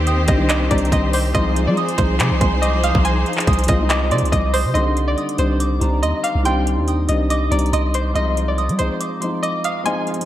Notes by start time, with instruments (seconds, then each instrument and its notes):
Already playing: 808-style bass D#2, felt piano D#3 G3 C4 D4, string section D#3 C4 G4 C5, synth pluck G5
0.07 synth bell D#6, closed hi-hat
0.27 808-style bass C2, felt piano D#3 G3 C4 D4, synth pluck D#5, kick, closed hi-hat
0.38 felt piano D#3 G3 C4 D4
0.49 synth pluck D#5, synth bell D6, clap, closed hi-hat
0.69 808-style bass C2, felt piano D#3 G3 C4 D4, synth pluck D5, synth bell A#5, kick, closed hi-hat
0.78 closed hi-hat
0.85 closed hi-hat
0.92 808-style bass C2, synth pluck D#5, synth bell C6, kick, closed hi-hat
1.13 synth pluck C5, synth bell D6, open hi-hat
1.33 808-style bass C2, felt piano F3 G#3 C4 D#4, string section F3 D#4 G#4 C5, synth pluck D#5, synth bell C6, kick, closed hi-hat
1.56 closed hi-hat
1.66 felt piano F3 G#3 C4 F4, 808-style bass G3, synth pluck D5
1.77 synth bell D#6, closed hi-hat
1.89 closed hi-hat
1.97 808-style bass C2, felt piano F3 G#3 C4 D#4, synth pluck C5, kick, closed hi-hat
2.20 808-style bass C3, synth bell D6, clap, closed hi-hat
2.31 808-style bass C2
2.39 808-style bass C2, felt piano F3 G#3 C4 D#4, synth bell C6, kick, closed hi-hat
2.62 synth pluck D#5, synth bell D6, closed hi-hat
2.84 synth pluck F5, synth bell D#6, closed hi-hat
2.95 808-style bass C2, kick
3.05 synth pluck G#5, synth bell C6, closed hi-hat
3.26 closed hi-hat
3.33 closed hi-hat
3.37 clap, closed hi-hat
3.47 808-style bass C2, synth bell D#6, kick, closed hi-hat
3.53 closed hi-hat
3.59 closed hi-hat
3.64 felt piano F3, closed hi-hat
3.68 808-style bass C2, felt piano G#3 C4 F4, synth pluck D#5, kick, closed hi-hat
3.79 felt piano F3 G#3 C4 D#4
3.90 synth pluck D#5, synth bell D6, clap, closed hi-hat
4.10 808-style bass C3, felt piano F3 G#3 C4 D#4, synth pluck D5, synth bell C6, closed hi-hat
4.18 closed hi-hat
4.23 808-style bass C2, closed hi-hat
4.32 808-style bass C2, synth pluck D#5, synth bell D6, kick, closed hi-hat
4.54 synth pluck C5, synth bell D#6, open hi-hat
4.65 808-style bass C3
4.74 808-style bass C2, felt piano D3 D#3 G3 C4, synth pluck D#5, synth bell C6, closed hi-hat
4.97 closed hi-hat
5.08 synth pluck D5
5.18 synth bell D#6, closed hi-hat
5.29 closed hi-hat
5.37 808-style bass C2, felt piano D#3 G3 C4 D4, synth pluck C5, closed hi-hat
5.60 synth bell D6, closed hi-hat
5.80 808-style bass C2, felt piano D#3 G3 C4 D4, synth bell A#5, closed hi-hat
6.03 808-style bass D#2, synth pluck D#5, synth bell C6, closed hi-hat
6.23 synth pluck F5, synth bell D6, closed hi-hat
6.35 808-style bass C2
6.43 felt piano D#3 G3 C4 D4, synth pluck G5, synth bell C6, closed hi-hat
6.67 closed hi-hat
6.76 808-style bass D#2, felt piano D#3 G3 C4 D4
6.88 synth bell D#6, closed hi-hat
7.08 808-style bass C2, felt piano D#3 G3 C4 D4, synth pluck D#5, closed hi-hat
7.30 synth pluck D#5, synth bell D6, closed hi-hat
7.50 808-style bass C2, felt piano D#3 G3 C4 D4, synth pluck D5, synth bell A#5, closed hi-hat
7.59 closed hi-hat
7.66 closed hi-hat
7.73 808-style bass C2, synth pluck D#5, synth bell C6, closed hi-hat
7.94 synth pluck C5, synth bell D6, closed hi-hat
8.14 808-style bass C2, felt piano F3 G#3 C4 D#4, synth pluck D#5, synth bell C6, closed hi-hat
8.37 closed hi-hat
8.48 synth pluck D5
8.58 synth bell D#6, closed hi-hat
8.69 808-style bass G3, closed hi-hat
8.77 808-style bass C2, felt piano F3 G#3 C4 D#4, synth pluck C5, closed hi-hat
9.01 synth bell D6, closed hi-hat
9.20 felt piano F3 G#3 C4 D#4, synth bell C6, closed hi-hat
9.43 synth pluck D#5, synth bell D6, closed hi-hat
9.64 synth pluck F5, synth bell D#6, closed hi-hat
9.84 felt piano F3 G#3 C4 D#4, synth pluck G#5, synth bell C6, closed hi-hat
10.07 closed hi-hat
10.14 felt piano F3 G#3, closed hi-hat
10.19 felt piano C4 D#4, closed hi-hat